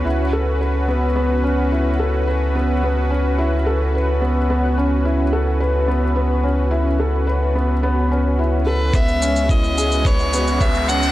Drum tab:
SH |----------------|----------------|----------------|----------------|
BD |----------------|----------------|----------------|----------------|

SH |xxxxxxxxxxxxxxxx|
BD |o---o---o---o---|